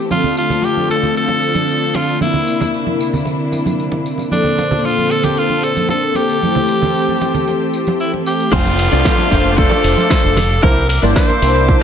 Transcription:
0.10 D3 F3 A3 C4 D4 F4 A4, tambourine, high conga
0.24 muted conga, low conga
0.37 F4, tambourine
0.50 tambourine, low conga
0.62 G4, tambourine, muted conga
0.77 high conga
0.89 A4, tambourine, muted conga
1.03 tambourine, low conga
1.16 A4, tambourine
1.28 muted conga
1.43 tambourine
1.55 tambourine, muted conga, high conga
1.69 tambourine
1.95 F4, tambourine, muted conga
2.09 tambourine
2.20 C3 D3 A#3 C4 E4, tambourine, muted conga, high conga
2.34 low conga
2.48 tambourine
2.61 tambourine, muted conga, low conga
2.74 tambourine
2.86 muted conga, high conga
3.01 tambourine
3.13 tambourine, low conga
3.25 tambourine, muted conga
3.52 tambourine, muted conga
3.66 tambourine, high conga
3.80 tambourine
3.92 muted conga
4.06 tambourine
4.18 tambourine, muted conga
4.31 A#2 D3 A#3 C4 D4 A4 C5, tambourine, high conga
4.44 low conga
4.58 tambourine, muted conga
4.71 tambourine, low conga
4.84 F4, tambourine, muted conga
4.98 high conga
5.11 A4, tambourine
5.23 G4, tambourine, muted conga, low conga
5.37 F4, tambourine
5.50 muted conga
5.64 A4, tambourine
5.76 tambourine, high conga
5.89 A4, tambourine, muted conga
6.15 G4, tambourine, muted conga
6.30 tambourine
6.41 E3 A3 C4 G4 C5, tambourine, high conga
6.55 muted conga, low conga
6.68 tambourine
6.82 tambourine, muted conga, low conga
6.95 tambourine
7.08 high conga
7.21 tambourine, muted conga
7.34 tambourine, low conga
7.48 tambourine, muted conga
7.74 tambourine
7.87 tambourine, muted conga, high conga
8.00 E4, tambourine
8.14 muted conga
8.26 G4, tambourine
8.40 tambourine
8.52 F1 A3 D4 F4 A4 C5 F5 D6, kick, crash, tambourine, downlifter, high conga
8.66 muted conga
8.79 open hi-hat, tambourine
8.91 C2 A3 D4 F4 A4 C5 D5, tambourine
9.05 kick, snare, tambourine, muted conga
9.18 high conga
9.31 F1 A3 D4 F4 C5, kick, open hi-hat, tambourine, muted conga
9.46 tambourine
9.57 A3 D4 F4 A4 C5, kick, tambourine
9.70 muted clean electric guitar stroke, tambourine, muted conga
9.84 F1 A3 D4 F4 C5, muted clean electric guitar stroke, open hi-hat, tambourine
9.97 tambourine, muted conga, high conga
10.10 D4 F4 A4 C5, kick, snare, tambourine
10.24 F1 A3 D4 F4 C5
10.36 open hi-hat, tambourine, muted conga, low conga
10.51 tambourine
10.62 C2 A#3 D4 E4 A#4 C5 E5 D6, kick, tambourine, muted conga, high conga
10.89 A#4, open hi-hat, tambourine
11.02 G1 A#3 D4 E4 A#4 C5 D5, tambourine, muted conga
11.16 C5, kick, snare, tambourine
11.29 muted conga, high conga
11.42 C2 A#3 D4 E4 C5, open hi-hat, tambourine
11.56 tambourine
11.68 A#3 D4 E4 C5, kick, tambourine, muted conga

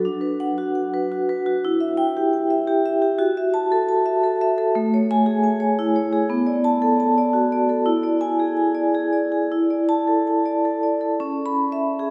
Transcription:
0.05 D4
0.21 B4
0.40 F#5
0.58 F#4
0.75 F#5
0.94 B4
1.12 F#4
1.29 B4
1.46 F#4
1.65 E4
1.80 E5
1.97 G5
2.17 G4
2.33 G5
2.50 E5
2.68 G4
2.86 E5
3.02 G4
3.19 F#4
3.37 E5
3.54 A5
3.72 A4
3.89 A5
4.06 E5
4.24 A4
4.41 E5
4.58 A4
4.75 A3
4.94 C#5
5.11 G#5
5.26 G#4
5.44 G#5
5.60 C#5
5.79 E4
5.96 C#5
6.13 G#4
6.30 B3
6.47 D5
6.64 A5
6.82 A4
7.00 A5
7.18 D5
7.33 F#4
7.52 D5
7.69 A4
7.86 E4
8.03 D5
8.21 G#5
8.39 G#4
8.57 G#5
8.75 D5
8.95 G#4
9.13 D5
9.32 G#4
9.52 E4
9.70 D5
9.89 A5
10.08 A4
10.27 A5
10.46 D5
10.65 A4
10.83 D5
11.01 A4
11.20 C#4
11.46 B5
11.72 E5
11.99 G#4

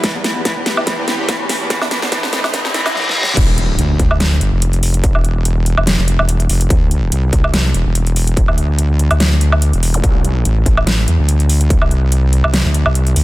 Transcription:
Already playing: riser
0.04 E3 B3 G4, kick, snare, closed hi-hat
0.15 E2
0.24 E3, snare, closed hi-hat
0.36 E2
0.45 E3, kick, snare, closed hi-hat
0.57 E2
0.66 E3, snare, closed hi-hat
0.77 E2, low woodblock
0.87 E3, kick, snare, closed hi-hat
0.98 E2
1.08 E3, snare, closed hi-hat
1.19 E2
1.29 E3, kick, snare, closed hi-hat
1.40 E2
1.49 E3, snare, open hi-hat
1.61 E2
1.70 E3 A3 E4 C5, kick, snare, closed hi-hat
1.82 E2, snare, low woodblock
1.91 E3, snare, closed hi-hat
2.02 E2, snare
2.12 E3, kick, snare, closed hi-hat
2.23 E2, snare
2.33 E3, snare, closed hi-hat
2.44 E2, snare, low woodblock
2.54 E3, kick, snare, closed hi-hat, reverse cymbal
2.65 E2, snare
2.74 E3, snare, closed hi-hat
2.86 E2, snare, low woodblock
2.95 snare
3.09 snare
3.23 snare
3.37 E1, kick, closed hi-hat, crash, impact
3.58 closed hi-hat
3.79 D2, closed hi-hat
3.99 D2, kick, closed hi-hat
4.11 low woodblock
4.20 snare, closed hi-hat
4.41 G1, closed hi-hat
4.52 F1
4.62 closed hi-hat
4.73 closed hi-hat
4.83 open hi-hat
4.94 closed hi-hat
5.04 kick, closed hi-hat
5.15 E1, low woodblock
5.24 closed hi-hat
5.45 closed hi-hat
5.66 closed hi-hat
5.77 E1, low woodblock
5.87 snare, closed hi-hat
5.98 F1
6.08 closed hi-hat
6.19 E1, low woodblock
6.29 closed hi-hat
6.40 closed hi-hat
6.49 F1, open hi-hat
6.61 closed hi-hat
6.70 D2, kick, closed hi-hat
6.91 closed hi-hat
7.12 C2, closed hi-hat
7.33 C2, kick, closed hi-hat
7.44 low woodblock
7.54 snare, closed hi-hat
7.74 E1, closed hi-hat
7.86 E1
7.95 closed hi-hat
8.07 closed hi-hat
8.16 open hi-hat
8.27 closed hi-hat
8.37 kick, closed hi-hat
8.48 D2, low woodblock
8.58 closed hi-hat
8.79 closed hi-hat
8.99 closed hi-hat
9.11 D2, closed hi-hat, low woodblock
9.20 snare, closed hi-hat
9.41 closed hi-hat
9.52 low woodblock
9.62 closed hi-hat
9.73 E1, closed hi-hat
9.83 open hi-hat
9.94 closed hi-hat, zap
10.04 C2, kick, closed hi-hat
10.25 closed hi-hat
10.45 A1, closed hi-hat
10.66 A1, kick, closed hi-hat
10.77 low woodblock
10.87 snare, closed hi-hat
11.08 E2, closed hi-hat
11.19 D2
11.29 closed hi-hat
11.40 closed hi-hat
11.49 open hi-hat
11.61 closed hi-hat
11.70 kick, closed hi-hat
11.82 C2, low woodblock
11.91 closed hi-hat
12.12 closed hi-hat
12.33 closed hi-hat
12.44 C2, low woodblock
12.54 snare, closed hi-hat
12.65 D2
12.74 closed hi-hat
12.86 C2, low woodblock
12.95 closed hi-hat
13.07 closed hi-hat
13.16 D2, open hi-hat

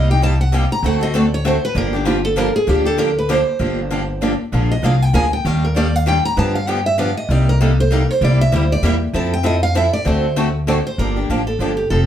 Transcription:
Already playing: C2 C3 G3 A#3 D#4 G4
0.10 A#3 D#4 G4 G5
0.22 C3 G3 A#3 D#4 G4 A5
0.41 F#5
0.52 C3 G3 A#3 D#4 G4 G5
0.72 A#5
0.83 D2 D3 A3 C4 F#4 A4 F#5
1.01 C4 F#4 A4 D#5
1.14 D3 A3 C4 F#4 A4 D5
1.34 C#5
1.45 D3 A3 C4 F#4 A4 C5
1.65 B4
1.75 G1 D3 F3 A#3 D4 G4 A#4
1.93 A#3 D4 G4
2.05 D3 F3 A#3 D4 F4 G4
2.25 A4
2.36 D3 F3 A#3 D4 G4 A#4
2.56 G#4
2.67 D2 D3 F3 A#3 D4 G4
2.85 A#3 D4 G4 A4
2.98 D3 F3 A#3 D4 G4 A#4
3.19 B4
3.29 D3 F3 A#3 D4 G4 C5
3.59 G1 D3 F3 A#3 D4 G4
3.91 D3 F3 A#3 D4 G4
4.22 D3 F3 A#3 D4 G4
4.52 A#1 D3 F3 G#3 A#3 D4 F4 G#4 A#4
4.72 D#5
4.83 C2 D3 F3 G#3 A#3 D4 F4 G#4 A#4 F5
5.02 G5
5.13 D2 D3 F3 G#3 A#3 D4 F4 G#4 A#4 G#5
5.33 G5
5.45 D#2 D#3 G3 A#3 D4 G4 F5
5.65 A#4
5.76 D#3 G3 A#3 D4 G4 D5
5.96 F5
6.06 D#3 G3 A#3 D4 G4 G5
6.25 A#5
6.37 G2 D3 F3 B3 D4 G4 A5
6.55 F5
6.67 D3 F3 B3 D4 G4 G5
6.86 E5
6.98 D3 F3 B3 D4 G4 F5
7.17 D#5
7.29 C2 C3 G3 A#3 D#4 G4 D5
7.49 A#4
7.61 C3 G3 A#3 D#4 G4 A4
7.80 C5
7.91 C3 G3 A#3 D#4 G4 A#4
8.11 C5
8.21 C2 C3 G3 A#3 E4 G4 D5
8.41 E5
8.52 D2 C3 G3 A#3 E4 G4 C5
8.72 D5
8.82 E2 C3 G3 A#3 E4 G4 E5
9.13 F2 F3 C4 E4 A4 A5
9.34 G5
9.43 F3 C4 E4 A4 D#5
9.63 F5
9.75 F3 C4 E4 A4 E5
9.93 D5
10.05 D2 D3 A3 C4 F#4 A4 C5
10.36 D3 A3 C4 F#4 A4
10.67 D3 A3 C4 F#4 A4 D5
10.87 C5
10.98 G1 D3 F3 A#3 D4 G4 A#4
11.16 A#3 D4 G4
11.29 A1 D3 F3 A#3 D4 G4
11.47 A4
11.59 G1 D3 F3 A#3 D4 G4
11.77 G4
11.90 F1 F3 C4 D#4 A4

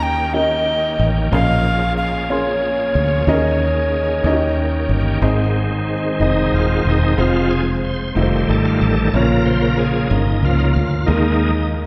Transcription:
Already playing: D#2 D#3 A#3 C#4 G4 A#4 D#5
0.03 G5
0.34 C#4 G4 A#4 D#5
0.99 A1
1.31 A#1 A#2 F3 C#4 G#4 A#4 F5
1.97 F5
2.30 C#4 G#4 A#4 C#5 C6
2.95 D2
3.27 D#2 D#3 C#4 G4 G#4 A#4 D#5
3.35 G#4
4.24 D#2 D#3 C#4 F#4 G4 A#4 D#5
4.33 G4
4.89 G1
5.21 G#1 G#2 D#3 G#3 C4 D#4 G#4 C5 D#5
6.20 F1 C4 D#4 G#4 D#5
6.52 D#1 F4
6.85 E1 D#4
7.17 F1 F3 G#3 C4 F4 C5
7.50 G#4
7.84 C5
8.15 F1 D#3 G3 A3 D#4 F4 A4 A#4
8.23 C5
8.49 G#1 A4
8.65 F4
8.81 A1 A4
9.14 A#1 A#2 C#3 F3 A#3 C#4 F4 A#4 C#5
9.45 C5
9.61 A#4
9.77 G#4
10.10 G1 A#3 C#4 D#4 F4 A#4
10.43 C#2 C#3 F3 A#3 F4
10.59 D#4
10.74 D2 F4
11.06 D#2 D#3 G#3 A#3 D#4 G#4 D#5
11.10 D#4 A#4

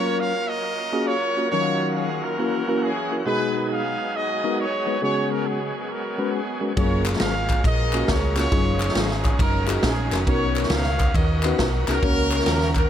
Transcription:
Already playing: F#3 A#3 C#4 F4 A#4 C#5
0.20 F5
0.48 A#4 D#5
0.92 A#3 C#4 F4 F#4 G#4
1.06 F4 A#4 C#5
1.37 A#3 C#4 F4 F#4 A#4
1.51 D#3 F#3 C#4 D#4 F4 F#4 A#4 C#5 F5
1.97 G#4
2.24 C#4 E4 A#4
2.39 E3 A#3 C#4 E4 F#4 A#4
2.68 A#3 C#4 E4 F#4 A#4
2.82 C#4 E4 G#4
3.11 A#3 C#4 E4 F#4 A#4
3.25 B2 G#3 B3 D#4 F#4 G#4 B4
3.72 G#4 F5
4.16 F#4 G#4 D#5
4.44 G#3 B3 D#4 F#4 A#4
4.60 F#4 G#4 C#5
4.86 G#3 B3 D#4 F#4 B4
5.02 C#3 G#3 B3 C#4 F#4 G#4 C#5
5.32 A#4
5.47 B3 G#4
5.91 F#4 A#4
6.18 G#3 B3 C#4 F#4 B4
6.33 B3 G#4
6.61 G#3 B3 C#4 F#4 A#4
6.76 F#1 F#3 A#3 C#4 F4 G#4 A#4 C#5, kick, ride
7.06 clap, ride
7.13 snare
7.20 G#1 G#4 A#4 F5, snare, ride
7.49 kick, clap, ride
7.64 A#1 G#4 A#4 D#5, kick, ride
7.93 A#3 C#4 F4 F#4 G#4, clap, ride
8.08 C#2 C#5, kick, snare, ride
8.36 A#3 C#4 F4 F#4 G#4 C#5, snare, clap, ride
8.51 F#1 D#3 F#3 C#4 D#4 F4 G#4, kick, ride
8.80 clap, ride
8.88 snare
8.95 G#1 C#4 D#4 G#4, snare, ride
9.25 kick, clap, ride
9.39 F#1 C#4 D#4 A#4, kick, ride
9.67 C#4 D#4 F4 F#4 G#4 A#4, clap, ride
9.83 A#1 C#4 D#4, kick, snare, ride
9.87 G#4
10.11 F1 C#4 D#4 F4 F#4 A#4, snare, clap, ride
10.25 B1 B2 B3 C#4 D#4 F#4 A#4, kick, ride
10.29 C#5
10.56 clap, ride
10.63 snare
10.70 C#2 A#4 C#5 F5, snare, ride
10.99 kick, clap, ride
11.14 D#2 F#4 A#4 D#5, kick, ride
11.43 B3 C#4 D#4 F#4 B4, clap, ride
11.59 B1, kick, snare, ride
11.87 C2 B3 C#4 D#4 F#4 G#4 A#4, snare, clap, ride
12.02 C#2 C#3 A#3 C#4 F#4 A#4 C#5, kick, ride
12.32 clap, ride
12.39 snare
12.46 D#2, snare, ride
12.75 A#4, kick, clap, ride

